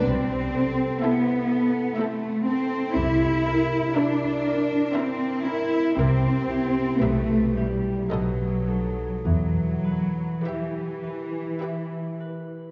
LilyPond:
<<
  \new Staff \with { instrumentName = "Violin section" } { \time 3/4 \key e \minor \tempo 4 = 58 r4 e''4 e''4 | r4 e''4 e''4 | e''4 e''4 dis''4 | r4 e''4 e''4 | }
  \new Staff \with { instrumentName = "Violin section" } { \time 3/4 \key e \minor r4 a'4 a'4 | r4 bes'4 bes'4 | bes'4 b'4 b'4 | r4 b'4 b'4 | }
  \new Staff \with { instrumentName = "Viola section" } { \time 3/4 \key e \minor r4 e'4 e'4 | r4 e'4 e'4 | g'4 g'4 a'4 | r4 g'4 g'4 | }
  \new Staff \with { instrumentName = "Harp" } { \time 3/4 \key e \minor c8 a'8 e'8 a'8 c'8 a'8 | c8 bes'8 e'8 bes'8 c'8 bes'8 | c8 <e' g'>8 b,8 <e' g'>8 b,8 <dis' a'>8 | e8 b'8 g'8 b'8 e'8 b'8 | }
  \new Staff \with { instrumentName = "Cello section" } { \time 3/4 \key e \minor c'4 b4 a8 c'8 | e'4 d'4 c'8 e'8 | c'4 a8 g8 fis4 | fis4 e4. r8 | }
  \new Staff \with { instrumentName = "Double bass section" } { \clef bass \time 3/4 \key e \minor c,4 r2 | c,4 r2 | c,4 b,,4 b,,4 | e,4 r2 | }
>>